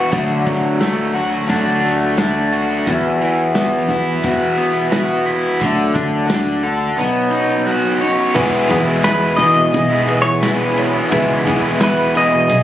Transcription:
Already playing: B3 E4 F#4
0.10 D2 D3 F#3 A3 D4 F#4, kick, closed hi-hat
0.45 D2 F#3, kick, closed hi-hat
0.79 F#3 A3 D4 F#4, snare, closed hi-hat
1.13 A3 D4 F#4, closed hi-hat
1.47 D2 D3 F#3 A3 D4 F#4, kick, closed hi-hat
1.84 A3, closed hi-hat
2.16 F#3 A3 D4 F#4, snare, closed hi-hat
2.52 F#4, closed hi-hat
2.86 E2 E3 B3 E4 F#4, kick, closed hi-hat
3.21 E3, closed hi-hat
3.54 E3 B3 E4 F#4, snare, closed hi-hat
3.88 E2 B3 E4 F#4, closed hi-hat
4.22 E2 E3 B3 E4 F#4, kick, closed hi-hat
4.58 B3, closed hi-hat
4.91 E3 B3 E4 F#4, snare, closed hi-hat
5.26 E4, closed hi-hat
5.60 D2 D3 F#3 A3 D4 F#4, kick, closed hi-hat
5.94 D2 D4, kick, closed hi-hat
6.28 F#3 A3 D4 F#4, snare, closed hi-hat
6.63 A3 D4 F#4 A4, closed hi-hat
6.97 B2 F#3 B3 C#4 D#4 F#4
7.31 D#4
7.66 F#3 C#4 D#4 F#4
8.00 C#4 D#4 F#4 C#5
8.34 E2 B2 E3 G#3 B3 E4 G#4 B4, kick, crash
8.69 E2 E3 G#3 B3 E4 G#4, kick, ride
8.87 E3 G#3 B3 E4
9.03 E2 B2 E3 G#3 B3 E4 G#4 B4, snare, ride
9.36 E3 G#3 B3 E4 G#4 D#5, ride
9.41 B3 E4
9.57 muted overdriven electric guitar stroke
9.71 B1 E3 B3 E4 G#4, kick, ride
9.90 E3 G#3 B3 E4
10.06 B3 E4 G#4 B4, ride
10.22 C#5, muted overdriven electric guitar stroke
10.40 E2 B2 E3 G#3 B3 E4 B4, snare, ride
10.75 E3 G#3 B3 E4 G#4 C#5, ride
10.93 E3 G#3 B3 E4
11.09 C#2 E2 B2 E3 G#3 B3 E4 G#4 B4, kick, ride
11.45 E2 E3 G#3 B3 E4 G#4, kick, ride
11.62 E3 G#3 B3 E4
11.79 E2 B2 E3 G#3 B3 E4 G#4, snare, ride
11.83 B4
12.14 E3 G#3 B3 E4 G#4 D#5, ride
12.32 muted overdriven electric guitar stroke
12.48 B1 E3 B3 E4 G#4, kick, ride

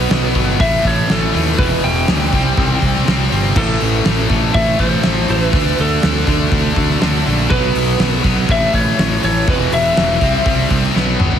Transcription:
Already playing: B2 F#3 B3 F#4 B4
0.10 B1 B2 F#3 B3, snare, open hi-hat
0.35 G1 B2 F#3 B3, kick, open hi-hat
0.59 A1 A2 E3 A3 E4 E5, kick, open hi-hat
0.85 A1 C#5, kick, open hi-hat
1.09 A1 A2 E3 A3 A4, snare, open hi-hat
1.34 D#2 A2 E3 A3, open hi-hat
1.58 E1 E2 B2 E3 B4 G5, kick, open hi-hat
1.83 E1 G5, open hi-hat
2.08 D2 E2 B2 E3, snare, open hi-hat
2.21 snare
2.33 C2 C3 G3 C4 G4 D5, kick, open hi-hat
2.57 C2 C3 G3 C4, kick, open hi-hat
2.82 C2, kick, open hi-hat
2.96 snare
3.06 C2 C3 G3 C4, snare, open hi-hat
3.32 G1 C3 G3 C4, open hi-hat
3.56 A1 A2 E3 A3 E4 A4 C5, kick, crash
3.80 A1, open hi-hat
4.05 A1 A2 E3 A3, snare, open hi-hat
4.18 snare
4.29 A1 A2 E3 A3, kick, open hi-hat
4.34 A2
4.53 A1 A2 E3 A3 E5, kick, open hi-hat
4.79 A1 A2 E3 A3 C5, kick, open hi-hat
5.03 A1 A2 E3 A3, snare, open hi-hat
5.28 A1 A2 E3 A3 C5, open hi-hat
5.42 B4
5.53 D2 D3 A3 D4 A4 E5, kick, open hi-hat
5.78 D2 A4, open hi-hat
6.03 D2 D3 A3 D4, snare, open hi-hat
6.16 snare
6.27 D2 D3 A3 D4, kick, open hi-hat
6.51 D2 D3 A3 D4, kick, open hi-hat
6.76 D2 D3 A3 D4, kick, open hi-hat
6.90 snare
7.01 D2 D3 A3 D4, snare, open hi-hat
7.25 A#1 D3 A3 D4, open hi-hat
7.50 B1 B2 F#3 B3 F#4 B4, kick, open hi-hat
7.75 B1, open hi-hat
7.99 B1 B2 F#3 B3, snare, open hi-hat
8.12 snare
8.24 B1 B2 F#3 B3, kick, open hi-hat
8.49 A1 A2 E3 A3 E4 E5, kick, open hi-hat
8.73 A1 C#5, kick, open hi-hat
8.87 snare
8.99 A1 A2 E3 A3, snare, open hi-hat
9.23 A1 A2 E3 A3 C#5, open hi-hat
9.48 E1 E2 B2 E3 E4 B4 F#5, kick, open hi-hat
9.72 E1 E5, open hi-hat
9.97 E1 E2 B2 E3, snare, open hi-hat
10.21 C2 C3 G3 C4 G4 D5, kick, open hi-hat
10.46 C2 C3 G3 C4, kick, open hi-hat
10.70 C2, kick, open hi-hat
10.83 snare
10.95 B1 B2 F#3 B3 F#4 B4, snare
11.20 G1 B2 F#3 B3, mid tom
11.32 floor tom

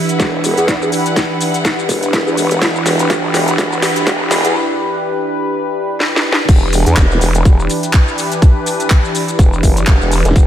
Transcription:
Already playing: E3 D4 E4 G4 B4 E5 F#5
0.09 closed hi-hat, shaker
0.20 E1, kick, snare, closed hi-hat, shaker
0.44 open hi-hat, shaker
0.57 E2, closed hi-hat, shaker
0.68 kick, snare, closed hi-hat, shaker
0.82 shaker
0.92 open hi-hat, shaker
1.06 closed hi-hat, shaker
1.16 kick, snare, closed hi-hat, shaker
1.41 open hi-hat, shaker
1.54 closed hi-hat, shaker
1.65 kick, snare, closed hi-hat, shaker
1.79 shaker
1.89 E1, kick, open hi-hat, shaker
2.03 closed hi-hat, shaker
2.13 kick, snare, closed hi-hat, shaker
2.27 E2, shaker
2.37 E1, open hi-hat, shaker
2.51 closed hi-hat, shaker
2.62 E1, kick, snare, closed hi-hat, shaker
2.76 shaker
2.86 E1, snare, open hi-hat, shaker
2.99 closed hi-hat, shaker
3.10 G1, kick, snare, closed hi-hat, shaker
3.34 E1, snare, open hi-hat, shaker
3.48 closed hi-hat, shaker
3.58 E1, kick, snare, closed hi-hat, shaker
3.72 shaker
3.82 snare, open hi-hat, shaker
3.96 closed hi-hat, shaker
4.07 E1, kick, snare, closed hi-hat, shaker
4.31 snare, open hi-hat, shaker
4.44 E2, closed hi-hat, shaker
6.00 snare
6.16 snare
6.32 snare
6.49 E1 E3 D4 G4 B4, kick, closed hi-hat, crash, shaker
6.73 open hi-hat, shaker
6.86 E2, closed hi-hat, shaker
6.96 E1, kick, clap, closed hi-hat, shaker
7.11 shaker
7.21 E1, open hi-hat, shaker
7.35 closed hi-hat, shaker
7.45 E1, kick, closed hi-hat, shaker
7.60 shaker
7.70 open hi-hat, shaker
7.83 closed hi-hat, shaker
7.93 kick, clap, closed hi-hat, shaker
8.08 shaker
8.18 open hi-hat, shaker
8.32 closed hi-hat, shaker
8.42 kick, closed hi-hat, shaker
8.66 open hi-hat, shaker
8.80 closed hi-hat, shaker
8.90 kick, clap, closed hi-hat, shaker
9.05 shaker
9.15 open hi-hat, shaker
9.28 closed hi-hat, shaker
9.39 E1, kick, closed hi-hat, shaker
9.53 shaker
9.63 F#1, kick, open hi-hat, shaker
9.77 closed hi-hat, shaker
9.87 kick, clap, closed hi-hat, shaker
10.01 E1, shaker
10.12 open hi-hat, shaker
10.25 E1, closed hi-hat, shaker
10.36 E1, kick, closed hi-hat, shaker

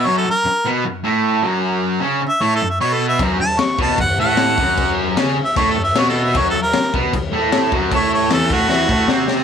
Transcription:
0.06 F#2 F#3 C#5
0.18 A4
0.27 A#4, muted distorted electric guitar stroke
0.46 muted distorted electric guitar stroke
0.66 B2 B3
0.85 F#2
1.04 A2 A3
1.42 F#2 F#3
2.00 C#3 C#4
2.21 muted distorted electric guitar stroke
2.29 E5
2.41 A2 A3 C#5
2.56 A4
2.61 F#2
2.70 E5
2.80 B2 B3 C#5
2.94 A4
3.08 E5
3.19 F#2 F#3, kick, crash
3.40 A5, muted distorted electric guitar stroke
3.59 C#6, muted distorted electric guitar stroke, snare, crash
3.78 B2 B3 A5, kick
3.98 F#2 F#5, kick, crash
4.19 A2 A3 F#5
4.37 snare, crash
4.57 F#2 F#3, kick
4.77 kick, crash
5.17 C#3 C#4, snare, crash
5.36 muted distorted electric guitar stroke
5.45 E5
5.56 A2 A3 C#5, kick, crash
5.71 A4
5.76 F#2
5.83 E5
5.96 B2 B3 C#5, snare, crash
6.09 A4
6.24 E5
6.34 F#2 F#3 C#5, kick, crash
6.50 A4
6.55 muted distorted electric guitar stroke
6.62 A#4
6.73 muted distorted electric guitar stroke, snare, crash
6.94 B2 B3, kick
7.13 F#2, kick, crash
7.33 A2 A3
7.52 snare, crash
7.72 F#2 F#3, kick
7.91 A2 A3, kick, crash
7.96 C#5
8.14 C#5
8.31 E2 E3 A4, snare, crash
8.50 A2 A3 F#4, kick
8.69 E3 E4, snare
8.88 A2 A3, kick
9.08 C3 C4, snare
9.28 snare

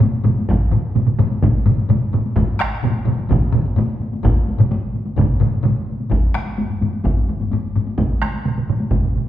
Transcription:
0.00 taiko low-mid, taiko mid, taiko high
0.24 taiko low-mid, taiko mid, taiko high
0.39 taiko high
0.49 taiko, taiko high
0.72 taiko low-mid, taiko mid
0.95 taiko low-mid, taiko mid, taiko high
1.07 taiko low-mid, taiko mid
1.19 taiko low-mid, taiko mid, taiko high
1.31 taiko high
1.43 taiko, taiko low-mid, taiko mid, taiko high
1.66 taiko low-mid, taiko mid, taiko high
1.79 taiko high
1.89 taiko low-mid, taiko mid, taiko high
2.13 taiko low-mid, taiko mid, taiko high
2.26 taiko high
2.36 taiko, taiko low-mid, taiko mid, taiko high
2.60 taiko rim, taiko high
2.83 taiko low-mid, taiko mid, taiko high
3.05 taiko low-mid, taiko mid, taiko high
3.19 taiko high
3.29 taiko, taiko low-mid, taiko mid, taiko high
3.53 taiko low-mid, taiko mid, taiko high
3.66 taiko high
3.76 taiko low-mid, taiko mid, taiko high
4.01 taiko high
4.13 taiko high
4.23 taiko, taiko low-mid, taiko mid, taiko high
4.48 taiko high
4.58 taiko low-mid, taiko mid, taiko high
4.71 taiko high
4.95 taiko high
5.06 taiko high
5.16 taiko, taiko low-mid, taiko mid, taiko high
5.40 taiko low-mid, taiko mid, taiko high
5.54 taiko high
5.63 taiko low-mid, taiko mid, taiko high
5.89 taiko high
6.00 taiko high
6.10 taiko, taiko low-mid, taiko high
6.34 taiko rim, taiko high
6.47 taiko high
6.58 taiko low-mid, taiko high
6.70 taiko low-mid
6.81 taiko low-mid, taiko high
6.93 taiko high
7.04 taiko, taiko low-mid, taiko high
7.17 taiko low-mid
7.28 taiko low-mid, taiko high
7.40 taiko low-mid, taiko high
7.51 taiko low-mid, taiko high
7.76 taiko low-mid, taiko high
7.87 taiko high
7.98 taiko, taiko mid, taiko high
8.22 taiko rim, taiko high
8.34 taiko high
8.45 taiko mid, taiko high
8.58 taiko mid
8.69 taiko mid, taiko high
8.80 taiko high
8.91 taiko, taiko mid, taiko high
9.04 taiko mid
9.15 taiko mid, taiko high

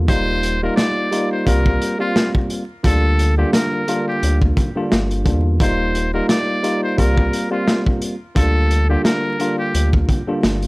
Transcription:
Already playing: E2
0.08 D#1 G3 A#3 D#4 F4 C5, kick, closed hi-hat
0.43 closed hi-hat
0.62 G3 A#3 D#4 F4 A#4
0.76 D5, snare, closed hi-hat
1.11 G3 A#3 D#4 F4, closed hi-hat
1.32 C5
1.45 C2 G3 A#3 C4 F4 A#4, kick, closed hi-hat
1.66 kick
1.82 closed hi-hat
1.99 G3 A#3 C4 F4
2.16 snare, closed hi-hat
2.35 kick
2.50 closed hi-hat
2.83 D2 D3 G3 A#3 D4 F4 A4, kick, closed hi-hat
3.19 closed hi-hat
3.37 D3 G3 A#3 D4 F4 G4
3.53 A#4, snare, closed hi-hat
3.88 D3 G3 A#3 D4 F4, closed hi-hat
4.08 G4
4.23 D2, closed hi-hat
4.42 kick
4.57 kick, closed hi-hat
4.76 D3 G3 A#3 D4 F4
4.92 G1, snare, closed hi-hat
5.11 closed hi-hat
5.24 E2 D3 G3 A#3 D4 F4, kick, closed hi-hat
5.60 D#1 G3 A#3 D#4 F4 C5, kick, closed hi-hat
5.95 closed hi-hat
6.14 G3 A#3 D#4 F4 A#4
6.29 D5, snare, closed hi-hat
6.63 G3 A#3 D#4 F4, closed hi-hat
6.83 C5
6.97 C2 G3 A#3 C4 F4 A#4, kick, closed hi-hat
7.17 kick
7.33 closed hi-hat
7.51 G3 A#3 C4 F4
7.68 snare, closed hi-hat
7.86 kick
8.02 closed hi-hat
8.35 D2 D3 G3 A#3 D4 F4 A4, kick, closed hi-hat
8.71 closed hi-hat
8.89 D3 G3 A#3 D4 F4 G4
9.05 A#4, snare, closed hi-hat
9.40 D3 G3 A#3 D4 F4, closed hi-hat
9.59 G4
9.74 D2, closed hi-hat
9.93 kick
10.09 kick, closed hi-hat
10.27 D3 G3 A#3 D4 F4
10.43 G1, snare, closed hi-hat
10.62 closed hi-hat

